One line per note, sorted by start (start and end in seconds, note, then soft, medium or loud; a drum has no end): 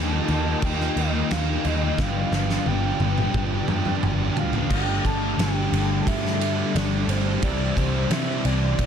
0.00 0.19 D#2 loud
0.00 0.28 D#3 loud
0.00 0.45 D#3 medium
0.00 0.28 G3 loud
0.00 0.13 A#3 loud
0.00 0.30 A#3 loud
0.00 0.12 D#4 loud
0.00 0.30 D#4 loud
0.00 1.96 F4 medium
0.00 0.11 G4 loud
0.00 1.96 A#4 medium
0.00 1.96 D#5 medium
0.00 4.67 G5 medium
0.00 0.66 A5 loud
0.11 0.29 A#3 medium
0.11 0.29 D#4 medium
0.11 0.31 G4 medium
0.28 0.53 D#2 loud
0.28 0.80 D#3 medium
0.28 0.96 G3 medium
0.28 0.48 A#3 medium
0.28 0.47 D#4 medium
0.28 0.46 D#4 medium
0.28 0.46 G4 medium
0.28 crash medium
0.46 0.96 A#3 medium
0.46 0.82 A#3 medium
0.46 0.80 D#4 medium
0.46 0.97 D#4 medium
0.46 0.99 G4 medium
0.62 0.87 D#2 loud
0.62 0.99 G5 loud
0.62 kick loud
0.62 crash medium
0.81 0.99 A#3 medium
0.81 0.99 D#4 medium
0.81 snare soft
0.96 1.21 D#2 medium
0.96 1.31 D#3 medium
0.96 1.32 G3 medium
0.96 1.15 A#3 medium
0.96 1.31 A#3 medium
0.96 1.14 D#4 medium
0.96 1.13 G4 medium
0.96 1.33 D#5 loud
0.96 crash medium
1.00 1.32 D#4 loud
1.13 1.32 A#3 medium
1.13 1.32 D#4 medium
1.13 1.33 G4 medium
1.31 1.56 D#2 loud
1.31 1.97 D#3 medium
1.31 1.65 D#3 medium
1.31 1.64 G3 medium
1.31 1.66 A#3 medium
1.31 1.64 A#3 loud
1.31 1.65 D#4 medium
1.31 1.67 D#4 loud
1.31 1.67 G4 medium
1.31 1.68 F5 medium
1.31 snare loud
1.31 crash medium
1.64 1.90 D#2 loud
1.64 1.98 D#3 medium
1.64 1.99 G3 medium
1.64 1.83 A#3 medium
1.64 1.84 A#3 medium
1.64 1.82 D#4 medium
1.64 1.81 G4 medium
1.64 1.99 D#5 medium
1.64 crash medium
1.82 1.98 A#3 medium
1.82 1.97 D#4 medium
1.82 1.98 D#4 medium
1.82 2.01 G4 medium
1.98 2.23 G1 loud
1.98 2.66 G2 medium
1.98 2.31 G2 loud
1.98 2.66 D3 medium
1.98 2.33 D3 loud
1.98 2.31 F3 loud
1.98 2.34 G3 loud
1.98 2.32 B3 loud
1.98 2.33 D4 loud
1.98 4.68 F4 medium
1.98 2.34 G4 loud
1.98 4.69 B4 medium
1.98 4.69 D5 medium
1.98 2.69 F5 loud
1.98 kick loud
1.98 snare medium
2.31 2.57 G1 medium
2.31 2.66 G2 medium
2.31 2.51 D3 medium
2.31 2.52 F3 medium
2.31 2.49 G3 medium
2.31 2.51 B3 medium
2.31 2.50 D4 medium
2.31 2.49 G4 medium
2.31 snare medium
2.50 2.67 D3 medium
2.50 2.67 F3 medium
2.50 2.68 G3 medium
2.50 2.68 B3 medium
2.50 2.68 D4 medium
2.50 2.69 G4 medium
2.50 snare medium
2.66 2.91 G1 medium
2.66 3.18 G2 loud
2.66 3.01 G2 loud
2.66 3.18 D3 loud
2.66 3.02 D3 loud
2.66 2.85 F3 loud
2.66 3.02 G3 loud
2.66 2.84 B3 loud
2.66 2.84 D4 loud
2.66 2.83 G4 loud
2.66 4.37 G5 loud
2.66 high tom medium
2.84 3.00 F3 medium
2.84 3.01 B3 medium
2.84 3.02 D4 medium
2.84 3.03 G4 medium
3.00 3.25 G1 medium
3.00 3.52 G2 medium
3.00 3.19 D3 medium
3.00 3.20 F3 medium
3.00 3.17 G3 medium
3.00 3.20 B3 medium
3.00 3.19 D4 medium
3.00 high tom medium
3.05 3.17 G4 medium
3.18 3.53 D3 medium
3.18 3.68 F3 soft
3.18 3.52 G3 medium
3.18 3.69 B3 medium
3.18 3.70 D4 medium
3.18 3.71 G4 medium
3.18 mid tom medium
3.34 3.59 G1 loud
3.34 kick medium
3.34 mid tom medium
3.53 3.69 D3 medium
3.53 3.69 G3 medium
3.68 3.94 G2 medium
3.68 4.03 G2 medium
3.68 4.04 D3 medium
3.68 3.87 F3 medium
3.68 4.04 G3 medium
3.68 3.86 B3 medium
3.68 3.85 D4 medium
3.68 3.85 G4 medium
3.68 mid tom loud
3.85 4.02 F3 medium
3.85 4.02 B3 medium
3.85 4.03 D4 medium
3.85 4.03 G4 medium
3.85 mid tom medium
4.02 4.28 G1 loud
4.02 4.68 G2 medium
4.02 4.37 G2 medium
4.02 4.69 D3 loud
4.02 4.38 D3 medium
4.02 4.35 F3 loud
4.02 4.38 G3 medium
4.02 4.36 B3 medium
4.02 4.37 D4 loud
4.02 4.37 G4 loud
4.02 mid tom loud
4.36 4.61 D2 loud
4.36 4.70 G2 medium
4.36 4.55 D3 medium
4.36 4.54 F3 medium
4.36 4.53 G3 medium
4.36 4.54 B3 medium
4.36 4.53 D4 medium
4.36 4.52 G4 medium
4.36 4.73 F5 loud
4.36 floor tom loud
4.53 4.70 D3 medium
4.53 4.70 F3 medium
4.53 4.69 G3 medium
4.53 4.69 B3 medium
4.53 4.69 D4 medium
4.53 4.68 G4 medium
4.53 floor tom loud
4.70 4.98 G1 medium
4.70 5.38 G2 medium
4.70 5.39 D3 medium
4.70 6.43 G3 medium
4.70 5.41 G3 medium
4.70 6.40 A3 medium
4.70 6.41 D4 medium
4.70 7.41 G4 medium
4.70 6.39 G4 loud
4.70 7.41 A4 medium
4.70 8.86 D5 medium
4.70 5.07 G5 loud
4.70 7.40 A5 medium
4.70 kick loud
4.70 crash loud
5.05 5.33 G1 medium
5.05 5.41 A5 loud
5.05 kick medium
5.05 ride medium
5.38 5.66 G1 loud
5.38 6.06 G2 medium
5.38 5.74 D3 medium
5.38 5.72 G3 medium
5.38 6.09 G5 loud
5.38 snare loud
5.38 ride medium
5.72 6.00 G1 medium
5.72 6.07 D3 medium
5.72 6.09 G3 medium
5.72 ride medium
6.07 6.62 G2 medium
6.07 6.73 G2 medium
6.07 6.75 D3 loud
6.07 6.76 G3 loud
6.07 6.77 E5 loud
6.07 kick medium
6.07 ride loud
6.26 snare soft
6.40 6.74 G3 medium
6.40 6.74 A3 medium
6.40 6.76 D4 medium
6.40 6.76 G4 medium
6.40 ride medium
6.74 7.03 G1 medium
6.74 7.41 G2 medium
6.74 7.42 D3 medium
6.74 7.43 G3 medium
6.74 7.41 A3 medium
6.74 7.45 D4 medium
6.74 7.45 G4 medium
6.74 7.11 D5 loud
6.74 snare loud
6.74 ride medium
7.07 7.36 G1 medium
7.07 7.43 C5 medium
7.07 ride medium
7.42 7.70 C2 loud
7.42 8.10 C3 medium
7.42 8.86 C3 loud
7.42 8.86 E3 medium
7.42 8.12 G3 loud
7.42 8.86 G3 medium
7.42 8.86 C4 loud
7.42 8.12 C4 medium
7.42 8.86 E4 loud
7.42 8.86 C5 medium
7.42 7.78 D5 loud
7.42 8.86 G5 medium
7.42 kick loud
7.42 ride medium
7.77 8.05 C2 medium
7.77 8.12 C5 loud
7.77 kick medium
7.77 ride medium
8.10 8.38 C3 medium
8.10 8.78 C3 medium
8.10 8.48 G3 medium
8.10 8.45 C4 medium
8.10 8.47 E5 loud
8.10 snare loud
8.10 ride loud
8.45 8.73 C2 loud
8.45 8.79 G3 medium
8.45 8.79 C4 medium
8.45 8.86 D5 loud
8.45 ride medium
8.78 8.86 A1 medium
8.78 8.86 C3 loud
8.78 8.86 G3 loud
8.78 8.86 C4 loud
8.78 kick medium
8.78 ride loud